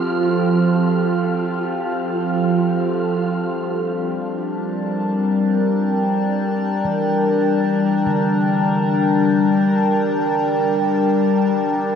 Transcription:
0.00 3.38 F3 medium
0.00 5.50 C4 medium
0.00 3.39 F4 medium
0.00 5.52 G4 medium
0.00 3.39 A4 medium
0.00 3.38 F5 medium
0.00 3.39 F6 medium
3.38 11.95 G3 medium
3.52 11.95 D4 medium
3.99 11.95 A5 medium
4.49 11.95 A#4 medium
4.90 11.95 G5 medium
6.85 8.24 E3 medium
8.06 11.78 D3 medium

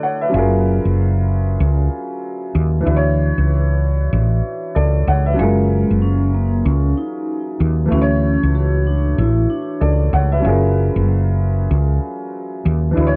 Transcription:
0.00 0.27 D3 medium
0.00 0.28 A3 medium
0.00 0.29 E4 medium
0.00 0.30 F#4 medium
0.00 0.36 A4 medium
0.00 0.22 C#5 medium
0.00 0.35 D5 medium
0.00 0.21 F#5 medium
0.21 0.52 B4 medium
0.21 0.52 E5 medium
0.29 2.80 F#3 medium
0.29 2.81 C#4 medium
0.34 0.78 F#1 loud
0.34 2.82 F4 medium
0.34 2.83 G#4 medium
0.38 2.85 A#4 medium
0.85 1.56 F#1 medium
1.60 1.88 C#2 loud
2.55 2.82 D#2 loud
2.80 5.32 E3 medium
2.80 5.33 D4 medium
2.85 3.31 D2 loud
2.85 5.34 E4 medium
2.85 5.36 F#4 medium
2.90 2.96 B4 medium
2.96 4.77 C#5 medium
3.38 4.09 C#2 medium
4.13 4.40 A1 loud
4.75 5.03 C#2 loud
4.75 5.06 A4 medium
4.75 5.06 D5 medium
5.07 5.35 C#2 loud
5.07 5.27 C#5 medium
5.07 5.27 F#5 medium
5.26 5.57 B4 medium
5.26 5.57 E5 medium
5.34 7.85 F#3 medium
5.34 7.86 C#4 medium
5.38 5.84 F#1 loud
5.38 5.98 G#3 loud
5.38 7.87 F4 medium
5.38 7.89 G#4 medium
5.43 7.90 A#4 medium
5.91 6.62 F#1 medium
6.02 6.31 C#4 medium
6.34 6.63 A#3 medium
6.66 6.93 C#2 loud
6.66 6.94 C#4 medium
6.97 7.88 D#4 medium
7.60 7.88 D#2 loud
7.86 10.37 E3 medium
7.86 10.38 A3 medium
7.90 8.36 D2 loud
7.90 8.51 C#4 loud
7.90 10.40 E4 medium
7.90 10.41 F#4 medium
7.95 8.02 B4 medium
8.02 9.82 C#5 medium
8.43 9.14 C#2 medium
8.55 8.83 F#4 medium
8.87 9.15 D4 medium
9.18 9.45 A1 loud
9.18 9.47 E4 medium
9.50 9.98 D4 medium
9.81 10.09 C#2 loud
9.81 10.11 A4 medium
9.81 10.11 D5 medium
10.13 10.40 C#2 loud
10.13 10.32 C#5 medium
10.13 10.32 F#5 medium
10.32 10.62 B4 medium
10.32 10.62 E5 medium
10.39 12.91 F#3 medium
10.39 12.92 C#4 medium
10.44 10.89 F#1 loud
10.44 12.93 F4 medium
10.44 12.94 G#4 medium
10.49 12.95 A#4 medium
10.96 11.67 F#1 medium
11.71 11.98 C#2 loud
12.66 12.93 D#2 loud
12.91 13.16 E3 medium
12.91 13.16 D4 medium
12.96 13.16 D2 loud
12.96 13.16 E4 medium
12.96 13.16 F#4 medium
13.00 13.07 B4 medium
13.07 13.16 C#5 medium

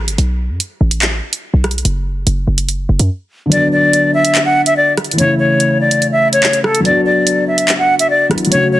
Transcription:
0.08 0.18 G1 loud
0.08 closed hi-hat medium
0.18 0.51 B1 loud
0.18 closed hi-hat soft
0.49 0.59 F#2 loud
0.60 closed hi-hat medium
0.81 1.21 A1 loud
0.91 closed hi-hat medium
1.02 clap loud
1.02 closed hi-hat medium
1.33 closed hi-hat medium
1.54 1.84 B1 loud
1.64 cross-stick medium
1.64 closed hi-hat medium
1.71 closed hi-hat medium
1.78 closed hi-hat medium
1.85 2.25 F#1 loud
1.85 closed hi-hat loud
2.27 2.47 F#1 loud
2.27 closed hi-hat medium
2.47 2.87 F#1 loud
2.58 closed hi-hat medium
2.69 closed hi-hat medium
2.89 2.99 F#1 loud
2.99 3.09 F#2 loud
2.99 closed hi-hat medium
3.46 5.12 D3 medium
3.46 5.14 F#3 medium
3.51 5.16 B3 medium
3.51 3.68 D5 medium
3.51 closed hi-hat loud
3.56 5.17 D4 medium
3.72 4.12 D5 medium
3.93 closed hi-hat medium
4.14 4.44 E5 medium
4.25 closed hi-hat loud
4.35 clap loud
4.35 closed hi-hat medium
4.45 4.62 F#5 medium
4.66 4.74 E5 medium
4.66 closed hi-hat medium
4.77 4.93 D5 medium
4.97 cross-stick medium
4.97 closed hi-hat medium
5.04 closed hi-hat medium
5.11 6.79 E3 medium
5.11 closed hi-hat medium
5.17 6.83 C#3 medium
5.17 6.81 A3 medium
5.17 5.35 C#5 loud
5.17 closed hi-hat loud
5.24 6.84 E4 medium
5.39 5.78 C#5 medium
5.60 closed hi-hat medium
5.81 6.10 D5 medium
5.91 closed hi-hat medium
6.02 closed hi-hat medium
6.12 6.28 E5 medium
6.33 6.62 C#5 medium
6.33 closed hi-hat medium
6.43 clap loud
6.53 closed hi-hat medium
6.64 6.80 A4 medium
6.64 cross-stick medium
6.75 closed hi-hat medium
6.80 8.25 F#3 medium
6.80 8.27 B3 medium
6.85 8.29 D4 medium
6.85 7.01 D5 loud
6.85 closed hi-hat soft
6.91 8.31 F#4 medium
7.06 7.45 D5 medium
7.27 closed hi-hat medium
7.47 7.77 E5 medium
7.58 closed hi-hat loud
7.68 clap loud
7.68 closed hi-hat medium
7.79 7.95 F#5 medium
7.99 8.08 E5 medium
7.99 closed hi-hat medium
8.10 8.26 D5 medium
8.29 8.45 F#3 medium
8.29 8.52 B3 soft
8.29 8.53 D4 medium
8.29 cross-stick medium
8.29 closed hi-hat medium
8.35 8.54 E4 medium
8.35 closed hi-hat medium
8.45 8.80 F#3 medium
8.45 closed hi-hat medium
8.50 8.80 C#3 medium
8.50 8.80 A3 medium
8.50 8.68 C#5 loud
8.50 closed hi-hat loud
8.57 8.80 F#4 medium
8.72 8.80 C#5 medium

